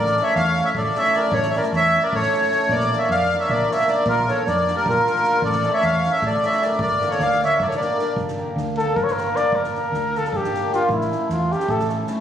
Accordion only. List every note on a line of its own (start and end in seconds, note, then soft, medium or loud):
0.00 0.23 D5 loud
0.23 0.34 E5 medium
0.36 0.64 F5 loud
0.65 0.70 E5 medium
0.77 0.97 D5 medium
0.97 1.16 E5 loud
1.15 1.33 D5 medium
1.33 1.50 C#5 loud
1.50 1.55 E5 medium
1.56 1.64 D5 medium
1.76 2.03 E5 loud
2.02 2.14 D5 medium
2.15 2.72 C#5 loud
2.71 2.99 D5 loud
2.98 3.09 E5 medium
3.11 3.36 F5 loud
3.40 3.51 E5 medium
3.50 3.71 D5 medium
3.73 3.90 E5 medium
3.89 4.08 D5 medium
4.08 4.29 A#4 loud
4.29 4.48 C#5 medium
4.48 4.76 D5 medium
4.76 4.87 A#4 medium
4.89 5.41 A#4 medium
5.44 5.72 D5 medium
5.74 5.85 E5 medium
5.84 6.12 F5 loud
6.12 6.24 E5 loud
6.26 6.46 D5 medium
6.45 6.63 E5 medium
6.63 6.80 D5 medium
6.82 7.09 D5 loud
7.10 7.21 C#5 medium
7.22 7.41 F5 loud
7.45 7.62 E5 loud
7.62 7.68 D5 medium
7.68 7.75 C#5 medium
7.76 8.15 D5 medium